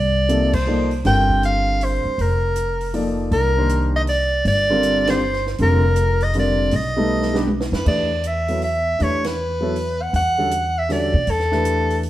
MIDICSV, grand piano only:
0, 0, Header, 1, 2, 480
1, 0, Start_track
1, 0, Tempo, 378788
1, 1328, Time_signature, 3, 2, 24, 8
1, 15331, End_track
2, 0, Start_track
2, 0, Title_t, "Grand piano"
2, 0, Program_c, 0, 0
2, 363, Note_on_c, 0, 48, 71
2, 364, Note_on_c, 0, 53, 62
2, 374, Note_on_c, 0, 58, 61
2, 374, Note_on_c, 0, 63, 58
2, 378, Note_on_c, 0, 69, 68
2, 645, Note_off_c, 0, 48, 0
2, 645, Note_off_c, 0, 53, 0
2, 650, Note_off_c, 0, 58, 0
2, 650, Note_off_c, 0, 63, 0
2, 652, Note_off_c, 0, 69, 0
2, 849, Note_on_c, 0, 53, 69
2, 850, Note_on_c, 0, 58, 68
2, 858, Note_on_c, 0, 69, 61
2, 860, Note_on_c, 0, 63, 69
2, 865, Note_on_c, 0, 74, 75
2, 1127, Note_off_c, 0, 53, 0
2, 1128, Note_off_c, 0, 58, 0
2, 1132, Note_off_c, 0, 69, 0
2, 1133, Note_off_c, 0, 63, 0
2, 1136, Note_off_c, 0, 74, 0
2, 1323, Note_on_c, 0, 50, 71
2, 1328, Note_on_c, 0, 55, 62
2, 1333, Note_on_c, 0, 60, 61
2, 1343, Note_on_c, 0, 65, 64
2, 1347, Note_on_c, 0, 70, 81
2, 2663, Note_off_c, 0, 50, 0
2, 2665, Note_off_c, 0, 55, 0
2, 2668, Note_off_c, 0, 60, 0
2, 2673, Note_off_c, 0, 65, 0
2, 2675, Note_off_c, 0, 70, 0
2, 3719, Note_on_c, 0, 58, 65
2, 3720, Note_on_c, 0, 53, 67
2, 3729, Note_on_c, 0, 63, 63
2, 3735, Note_on_c, 0, 69, 62
2, 3740, Note_on_c, 0, 74, 78
2, 4451, Note_off_c, 0, 53, 0
2, 4451, Note_off_c, 0, 58, 0
2, 4455, Note_off_c, 0, 63, 0
2, 4458, Note_off_c, 0, 69, 0
2, 4461, Note_off_c, 0, 74, 0
2, 4510, Note_on_c, 0, 51, 66
2, 4519, Note_on_c, 0, 58, 57
2, 4525, Note_on_c, 0, 67, 63
2, 4528, Note_on_c, 0, 62, 62
2, 4540, Note_on_c, 0, 72, 82
2, 5129, Note_off_c, 0, 51, 0
2, 5133, Note_off_c, 0, 58, 0
2, 5136, Note_off_c, 0, 67, 0
2, 5137, Note_off_c, 0, 62, 0
2, 5144, Note_off_c, 0, 72, 0
2, 5956, Note_on_c, 0, 50, 77
2, 5962, Note_on_c, 0, 55, 69
2, 5965, Note_on_c, 0, 60, 67
2, 5969, Note_on_c, 0, 65, 68
2, 5977, Note_on_c, 0, 70, 78
2, 6404, Note_off_c, 0, 50, 0
2, 6407, Note_off_c, 0, 55, 0
2, 6409, Note_off_c, 0, 60, 0
2, 6411, Note_off_c, 0, 65, 0
2, 6414, Note_off_c, 0, 70, 0
2, 6434, Note_on_c, 0, 50, 69
2, 6438, Note_on_c, 0, 55, 59
2, 6445, Note_on_c, 0, 60, 62
2, 6449, Note_on_c, 0, 65, 67
2, 6450, Note_on_c, 0, 67, 78
2, 6587, Note_off_c, 0, 50, 0
2, 6589, Note_off_c, 0, 55, 0
2, 6592, Note_off_c, 0, 60, 0
2, 6595, Note_off_c, 0, 65, 0
2, 6595, Note_off_c, 0, 67, 0
2, 7086, Note_on_c, 0, 50, 72
2, 7092, Note_on_c, 0, 55, 61
2, 7093, Note_on_c, 0, 60, 64
2, 7103, Note_on_c, 0, 70, 71
2, 7104, Note_on_c, 0, 65, 63
2, 7364, Note_off_c, 0, 50, 0
2, 7366, Note_off_c, 0, 55, 0
2, 7367, Note_off_c, 0, 60, 0
2, 7372, Note_off_c, 0, 70, 0
2, 7373, Note_off_c, 0, 65, 0
2, 8041, Note_on_c, 0, 50, 67
2, 8051, Note_on_c, 0, 55, 61
2, 8053, Note_on_c, 0, 60, 57
2, 8055, Note_on_c, 0, 65, 61
2, 8065, Note_on_c, 0, 70, 71
2, 8522, Note_off_c, 0, 50, 0
2, 8527, Note_off_c, 0, 55, 0
2, 8527, Note_off_c, 0, 60, 0
2, 8529, Note_off_c, 0, 65, 0
2, 8533, Note_off_c, 0, 70, 0
2, 8826, Note_on_c, 0, 55, 77
2, 8826, Note_on_c, 0, 59, 71
2, 8837, Note_on_c, 0, 57, 67
2, 8842, Note_on_c, 0, 63, 75
2, 8848, Note_on_c, 0, 69, 80
2, 9277, Note_off_c, 0, 55, 0
2, 9278, Note_off_c, 0, 59, 0
2, 9284, Note_off_c, 0, 57, 0
2, 9286, Note_off_c, 0, 63, 0
2, 9289, Note_off_c, 0, 69, 0
2, 9296, Note_on_c, 0, 55, 81
2, 9301, Note_on_c, 0, 59, 68
2, 9315, Note_on_c, 0, 63, 71
2, 9316, Note_on_c, 0, 62, 68
2, 9326, Note_on_c, 0, 67, 87
2, 9457, Note_off_c, 0, 55, 0
2, 9460, Note_off_c, 0, 59, 0
2, 9467, Note_off_c, 0, 62, 0
2, 9467, Note_off_c, 0, 63, 0
2, 9472, Note_off_c, 0, 67, 0
2, 9945, Note_on_c, 0, 52, 59
2, 9952, Note_on_c, 0, 57, 51
2, 9956, Note_on_c, 0, 62, 54
2, 9961, Note_on_c, 0, 67, 53
2, 9967, Note_on_c, 0, 71, 63
2, 10233, Note_off_c, 0, 52, 0
2, 10236, Note_off_c, 0, 57, 0
2, 10238, Note_off_c, 0, 62, 0
2, 10241, Note_off_c, 0, 67, 0
2, 10244, Note_off_c, 0, 71, 0
2, 10753, Note_on_c, 0, 54, 64
2, 10757, Note_on_c, 0, 59, 61
2, 10761, Note_on_c, 0, 69, 56
2, 10762, Note_on_c, 0, 64, 56
2, 10771, Note_on_c, 0, 73, 61
2, 10906, Note_off_c, 0, 54, 0
2, 10908, Note_off_c, 0, 59, 0
2, 10910, Note_off_c, 0, 69, 0
2, 10911, Note_off_c, 0, 64, 0
2, 10915, Note_off_c, 0, 73, 0
2, 11390, Note_on_c, 0, 52, 58
2, 11397, Note_on_c, 0, 62, 56
2, 11400, Note_on_c, 0, 57, 55
2, 11408, Note_on_c, 0, 67, 55
2, 11410, Note_on_c, 0, 71, 70
2, 11676, Note_off_c, 0, 52, 0
2, 11680, Note_off_c, 0, 62, 0
2, 11681, Note_off_c, 0, 57, 0
2, 11685, Note_off_c, 0, 67, 0
2, 11686, Note_off_c, 0, 71, 0
2, 12173, Note_on_c, 0, 54, 72
2, 12185, Note_on_c, 0, 59, 64
2, 12189, Note_on_c, 0, 64, 63
2, 12198, Note_on_c, 0, 69, 68
2, 12201, Note_on_c, 0, 73, 72
2, 12336, Note_off_c, 0, 54, 0
2, 12342, Note_off_c, 0, 59, 0
2, 12344, Note_off_c, 0, 64, 0
2, 12349, Note_off_c, 0, 69, 0
2, 12351, Note_off_c, 0, 73, 0
2, 13152, Note_on_c, 0, 50, 58
2, 13156, Note_on_c, 0, 55, 58
2, 13163, Note_on_c, 0, 61, 52
2, 13166, Note_on_c, 0, 66, 53
2, 13171, Note_on_c, 0, 69, 69
2, 13307, Note_off_c, 0, 50, 0
2, 13308, Note_off_c, 0, 55, 0
2, 13312, Note_off_c, 0, 61, 0
2, 13314, Note_off_c, 0, 66, 0
2, 13316, Note_off_c, 0, 69, 0
2, 13798, Note_on_c, 0, 50, 64
2, 13809, Note_on_c, 0, 55, 54
2, 13817, Note_on_c, 0, 66, 63
2, 13818, Note_on_c, 0, 61, 60
2, 13824, Note_on_c, 0, 69, 65
2, 14081, Note_off_c, 0, 50, 0
2, 14086, Note_off_c, 0, 55, 0
2, 14090, Note_off_c, 0, 66, 0
2, 14091, Note_off_c, 0, 61, 0
2, 14094, Note_off_c, 0, 69, 0
2, 14589, Note_on_c, 0, 52, 68
2, 14594, Note_on_c, 0, 57, 64
2, 14595, Note_on_c, 0, 62, 58
2, 14602, Note_on_c, 0, 67, 56
2, 14605, Note_on_c, 0, 71, 77
2, 15209, Note_off_c, 0, 52, 0
2, 15212, Note_off_c, 0, 57, 0
2, 15212, Note_off_c, 0, 62, 0
2, 15216, Note_off_c, 0, 67, 0
2, 15217, Note_off_c, 0, 71, 0
2, 15331, End_track
0, 0, End_of_file